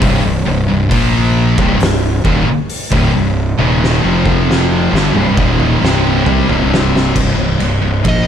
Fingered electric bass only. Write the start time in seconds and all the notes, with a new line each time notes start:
0.02 C1
0.25 C1
0.47 C1
0.70 C1
0.91 A#1
1.58 C1
1.80 C1
2.25 D#1
2.47 muted fingered electric bass stroke
2.92 D1
3.14 C1
3.59 D#1
4.03 F1
4.93 G1
5.15 C1
5.38 D#1
5.81 C1
6.26 C2
6.48 C1
7.16 C1
7.37 C1
7.59 C1
7.82 C1
8.05 A#1